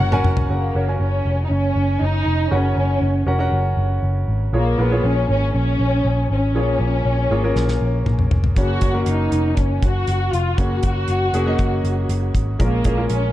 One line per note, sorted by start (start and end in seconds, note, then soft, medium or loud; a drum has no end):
0.00 0.20 F#1 medium
0.00 0.21 C#3 medium
0.00 0.48 C#3 medium
0.00 0.50 F#3 medium
0.00 0.49 A#3 medium
0.00 0.12 C#4 medium
0.00 0.13 F#4 medium
0.00 0.49 F#4 medium
0.00 0.13 A#4 medium
0.00 0.49 A#4 medium
0.00 0.22 F#5 medium
0.00 0.51 F#5 medium
0.00 high tom medium
0.12 0.46 C#4 medium
0.12 0.46 F#4 medium
0.12 0.46 A#4 medium
0.12 0.46 G#5 loud
0.12 mid tom medium
0.24 0.45 F1 medium
0.24 mid tom medium
0.37 floor tom medium
0.49 0.70 F#1 medium
0.49 1.22 C#3 soft
0.49 0.98 A#3 medium
0.49 0.72 C#4 medium
0.49 0.72 F#4 soft
0.49 0.72 A#4 soft
0.49 0.73 F#5 medium
0.75 0.96 F#1 medium
0.75 0.86 C#4 medium
0.75 0.87 F#4 soft
0.75 0.87 A#4 soft
0.75 0.87 C#5 medium
0.88 1.78 C#4 medium
0.88 1.78 F#4 medium
0.88 1.78 A#4 soft
0.88 1.78 G#5 medium
1.00 1.21 F#1 medium
1.00 1.44 C#4 medium
1.25 1.46 F1 medium
1.44 1.51 D#4 medium
1.50 1.71 F#1 medium
1.50 2.02 C#4 medium
1.76 1.96 F#1 medium
2.01 2.22 F#1 medium
2.01 2.52 D#4 medium
2.26 2.47 F1 medium
2.51 2.72 F#1 medium
2.51 3.23 C#3 soft
2.51 3.19 C#4 medium
2.51 3.28 C#4 medium
2.51 3.19 F#4 soft
2.51 3.19 A#4 soft
2.51 3.19 F#5 medium
2.77 2.97 F#1 medium
3.02 3.22 F#1 medium
3.26 3.48 F1 medium
3.26 3.38 C#4 medium
3.26 3.38 F#4 medium
3.26 3.38 A#4 medium
3.26 3.39 F#5 medium
3.39 4.29 C#4 medium
3.39 4.29 F#4 medium
3.39 4.30 A#4 medium
3.39 4.30 F#5 medium
3.52 3.73 F#1 medium
3.77 3.98 F#1 medium
4.03 4.23 F#1 medium
4.28 4.49 G#1 medium
4.53 4.74 A#1 medium
4.53 5.25 A#2 soft
4.53 5.25 F3 soft
4.53 4.76 A#3 medium
4.53 4.78 A#3 medium
4.53 4.76 F4 soft
4.53 4.76 G#4 medium
4.53 4.76 C#5 medium
4.78 4.99 A#1 medium
4.78 4.90 A#3 medium
4.78 5.05 B3 medium
4.78 4.90 F4 soft
4.78 4.90 G#4 medium
4.78 4.90 A#4 medium
4.91 5.81 A#3 medium
4.91 5.81 F4 medium
4.91 5.81 G#4 medium
4.91 5.81 C#5 medium
5.04 5.24 A#1 medium
5.04 5.30 C#4 medium
5.29 5.50 G#1 medium
5.29 5.53 C#4 medium
5.54 5.75 A#1 medium
5.54 6.27 C#4 medium
5.79 6.00 A#1 medium
6.05 6.25 A#1 medium
6.30 6.55 G#1 medium
6.30 8.28 C#4 medium
6.55 6.76 A#1 medium
6.55 7.27 A#2 soft
6.55 7.27 F3 soft
6.55 7.22 A#3 medium
6.55 7.22 F4 soft
6.55 7.23 G#4 soft
6.55 7.23 C#5 medium
6.79 7.00 A#1 medium
7.05 7.26 A#1 medium
7.31 7.51 G#1 medium
7.31 7.42 A#3 medium
7.31 7.42 F4 medium
7.31 7.42 G#4 medium
7.31 7.42 C#5 medium
7.44 8.33 A#3 medium
7.44 8.33 F4 medium
7.44 8.33 G#4 medium
7.44 8.34 A#4 medium
7.56 7.76 A#1 medium
7.56 snare soft
7.68 snare soft
7.81 8.02 A#1 medium
8.06 8.27 A#1 medium
8.06 mid tom medium
8.19 mid tom medium
8.31 8.52 F1 medium
8.31 floor tom medium
8.44 floor tom medium
8.56 8.77 F#1 medium
8.56 9.29 C#3 soft
8.56 8.79 A#3 medium
8.56 8.79 C#4 soft
8.56 8.79 F#4 soft
8.56 9.04 F#4 medium
8.56 8.80 C#5 medium
8.56 kick medium
8.56 closed hi-hat medium
8.81 9.03 F#1 medium
8.81 8.92 A#3 medium
8.81 8.92 C#4 soft
8.81 8.93 F#4 soft
8.81 8.93 C#5 medium
8.81 kick medium
8.81 closed hi-hat medium
8.94 9.84 A#3 medium
8.94 9.84 C#4 medium
8.94 9.84 F#4 medium
8.94 9.84 A#4 medium
9.06 9.27 F#1 medium
9.06 9.58 D#4 medium
9.06 closed hi-hat medium
9.32 9.53 F1 medium
9.32 closed hi-hat medium
9.57 9.78 F#1 medium
9.57 9.83 C#4 medium
9.57 kick medium
9.57 closed hi-hat medium
9.82 10.03 F#1 medium
9.82 10.33 F#4 medium
9.82 kick medium
9.82 closed hi-hat medium
10.07 10.29 F#1 medium
10.07 closed hi-hat medium
10.33 10.54 F1 medium
10.33 10.58 F4 medium
10.33 closed hi-hat medium
10.58 10.79 F#1 medium
10.58 11.30 C#3 soft
10.58 11.25 A#3 medium
10.58 11.26 C#4 soft
10.58 12.35 F#4 medium
10.58 11.26 F#4 medium
10.58 11.26 C#5 medium
10.58 kick medium
10.58 closed hi-hat medium
10.83 11.04 F#1 medium
10.83 kick medium
10.83 closed hi-hat medium
11.08 11.29 F#1 medium
11.08 closed hi-hat medium
11.33 11.54 F1 medium
11.33 11.45 A#3 medium
11.33 11.45 C#4 medium
11.33 11.45 F#4 medium
11.33 11.45 G#4 medium
11.33 closed hi-hat medium
11.46 12.36 A#3 medium
11.46 12.36 C#4 medium
11.46 12.36 F#4 medium
11.46 12.37 D#5 medium
11.59 11.80 F#1 medium
11.59 kick medium
11.59 closed hi-hat medium
11.84 12.05 F#1 medium
11.84 closed hi-hat medium
12.09 12.30 F#1 medium
12.09 closed hi-hat medium
12.35 12.55 G#1 medium
12.35 kick medium
12.35 closed hi-hat medium
12.59 12.80 A#1 medium
12.59 13.31 A#2 soft
12.59 13.31 F3 medium
12.59 12.82 G#3 medium
12.59 13.08 A#3 medium
12.59 12.82 C#4 medium
12.59 12.82 F4 medium
12.59 12.82 A#4 medium
12.59 kick medium
12.59 closed hi-hat medium
12.84 13.06 A#1 medium
12.84 12.96 G#3 medium
12.84 12.96 C#4 medium
12.84 12.96 F4 soft
12.84 12.96 G#4 medium
12.84 kick medium
12.84 closed hi-hat medium
12.97 13.32 G#3 medium
12.97 13.32 C#4 medium
12.97 13.32 F4 medium
12.97 13.32 A#4 medium
13.09 13.31 A#1 medium
13.09 13.32 C#4 medium
13.09 closed hi-hat medium